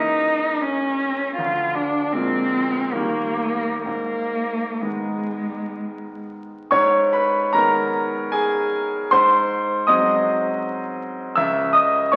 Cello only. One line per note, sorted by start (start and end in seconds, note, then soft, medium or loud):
0.00 0.63 D#4 medium
0.62 1.36 C#4 medium
1.36 1.76 F4 medium
1.75 2.14 D4 medium
2.13 2.96 C4 medium
2.94 3.84 A#3 medium
3.85 4.83 A#3 medium
4.81 6.25 G#3 medium